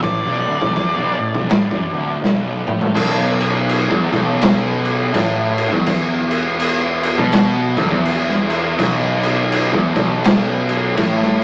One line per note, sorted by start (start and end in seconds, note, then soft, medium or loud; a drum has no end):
0.02 0.23 A1 medium
0.02 0.23 A2 loud
0.02 2.19 D5 medium
0.02 kick loud
0.02 crash medium
0.24 0.45 B0 medium
0.24 0.45 B1 loud
0.46 0.60 D1 medium
0.46 0.59 D2 loud
0.60 0.75 B0 medium
0.60 0.74 B1 loud
0.60 kick loud
0.74 0.96 E1 medium
0.74 0.96 E2 loud
0.74 kick loud
0.74 crash medium
0.97 1.19 B0 medium
0.97 1.18 B1 loud
1.18 1.34 A1 medium
1.18 1.32 A2 loud
1.33 1.48 B0 medium
1.33 1.47 B1 loud
1.33 kick loud
1.47 1.69 A1 medium
1.47 1.69 A2 loud
1.47 snare loud
1.47 crash medium
1.70 1.91 F#1 medium
1.70 1.91 F#2 loud
1.70 kick loud
1.92 2.19 D1 medium
1.92 2.21 D2 loud
2.21 2.63 B0 medium
2.21 2.64 B1 loud
2.21 snare medium
2.65 2.79 A1 loud
2.65 2.79 A2 medium
2.65 mid tom medium
2.80 2.94 A1 medium
2.80 2.94 A2 loud
2.80 floor tom medium
2.94 3.86 B0 loud
2.94 3.88 B1 loud
2.94 kick loud
2.94 crash loud
2.94 crash medium
3.40 crash medium
3.69 crash medium
3.89 4.11 E1 loud
3.89 4.10 E2 loud
3.89 kick loud
4.12 5.10 B0 loud
4.12 5.13 B1 loud
4.12 kick loud
4.12 crash medium
4.41 snare loud
4.41 crash medium
4.85 crash medium
5.14 5.69 A1 loud
5.14 5.72 A2 loud
5.14 kick loud
5.14 crash loud
5.58 crash medium
5.72 7.14 E1 loud
5.72 7.17 E2 loud
5.72 kick loud
5.86 kick loud
5.86 crash loud
6.31 crash medium
6.59 crash medium
7.03 crash medium
7.18 7.73 B1 loud
7.18 7.75 B2 loud
7.18 kick loud
7.32 snare loud
7.32 crash medium
7.77 7.90 D1 loud
7.77 7.90 D2 loud
7.77 kick loud
7.77 crash medium
7.91 8.74 E1 loud
7.91 8.78 E2 loud
7.91 kick loud
8.05 crash medium
8.30 snare soft
8.50 crash medium
8.79 9.70 B0 loud
8.79 9.72 B1 loud
8.79 kick loud
8.79 crash medium
9.23 crash medium
9.52 crash medium
9.73 9.94 E1 loud
9.73 9.94 E2 loud
9.73 kick loud
9.96 10.93 B0 loud
9.96 10.96 B1 loud
9.96 kick loud
9.96 crash medium
10.24 snare loud
10.24 crash loud
10.69 crash medium
10.97 11.44 A1 loud
10.97 11.44 A2 loud
10.97 kick loud
10.97 crash medium
11.21 snare soft